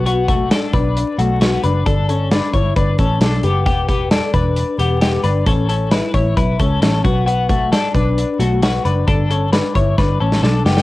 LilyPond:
<<
  \new Staff \with { instrumentName = "Clean electric guitar" } { \time 4/4 \key b \minor \tempo 4 = 133 <b fis'>8 <a fis'>8 <d' a'>8 <d' b'>4 <a fis'>8 <b fis'>8 <d' b'>8 | <d' a'>8 <cis' a'>8 <d' b'>8 <e' cis''>8 <d' b'>8 <cis' a'>8 <d' a'>8 <b g'>8 | <b g'>8 <b g'>8 <d' a'>8 <d' b'>4 <b g'>8 <b g'>8 <d' b'>8 | <cis' a'>8 <cis' a'>8 <e' b'>8 <e' cis''>8 <e' b'>8 <cis' a'>8 <cis' a'>8 <b fis'>8 |
<b fis'>8 <a fis'>8 <d' a'>8 <d' b'>4 <a fis'>8 <b fis'>8 <d' b'>8 | <d' a'>8 <cis' a'>8 <d' b'>8 <e' cis''>8 <d' b'>8 <cis' a'>8 <d' a'>8 <b g'>8 | }
  \new Staff \with { instrumentName = "Picked electric bass" } { \clef bass \time 4/4 \key b \minor b,,4~ b,,16 r16 b,,8. r16 b,,4 fis,,8 | g,,4~ g,,16 r16 g,,8 g,,8 a,,8 b,,8 fis,,8 | e,,4~ e,,16 r16 e,,8. r16 e,,4 g,,8 | a,,4~ a,,16 r16 a,,8 b,,8 cis,8 a,,8 b,,8~ |
b,,4~ b,,16 r16 b,,8. r16 b,,4 fis,,8 | g,,4~ g,,16 r16 g,,8 g,,8 a,,8 b,,8 fis,,8 | }
  \new DrumStaff \with { instrumentName = "Drums" } \drummode { \time 4/4 hh8 <hh bd>8 <hh sn>8 <hh bd>8 hh8 hh8 <hh sn>8 hh8 | <hh bd>8 hh8 <hh sn>8 <hh bd>8 <hh bd>8 <hh bd>8 <hh sn>8 hh8 | <hh bd>8 <hh bd>8 <hh sn>8 <hh bd>8 hh8 hh8 <hh sn>8 hh8 | <hh bd>8 hh8 <hh sn>8 <hh bd>8 <hh bd>8 <hh bd>8 <hh sn>8 <hh bd>8 |
hh8 <hh bd>8 <hh sn>8 <hh bd>8 hh8 hh8 <hh sn>8 hh8 | <hh bd>8 hh8 <hh sn>8 <hh bd>8 <bd sn>8. sn16 sn8 sn16 sn16 | }
>>